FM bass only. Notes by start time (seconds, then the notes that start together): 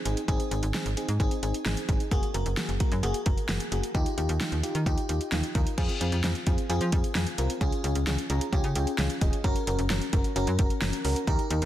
0.05 G#1
0.28 G#1
0.51 G#1
0.63 G#1
0.86 G#1
1.08 G#2
1.20 G#1
1.43 G#1
1.66 G#1
1.89 G#1
2.11 F#1
2.34 F#1
2.46 F#1
2.69 F#1
2.92 F#2
3.03 F#1
3.26 F#1
3.49 F#1
3.72 F#1
3.95 D#2
4.18 D#2
4.29 D#2
4.52 D#2
4.75 D#3
4.86 D#2
5.09 D#2
5.32 D#2
5.55 D#2
5.78 F2
6.01 F2
6.12 F2
6.24 F2
6.47 F2
6.69 F2
6.81 F3
6.93 F2
7.15 F2
7.38 C2
7.61 C#2
7.84 C#2
7.95 C#2
8.07 C#2
8.30 C#2
8.53 C#2
8.64 C#3
8.76 C#2
8.98 C#2
9.21 D#1
9.44 F#1
9.67 F#1
9.79 F#1
10.13 F#1
10.36 F#1
10.47 F#2
10.59 F#1
10.82 F#1
11.05 C#2
11.27 D#2
11.50 D#2
11.62 D#2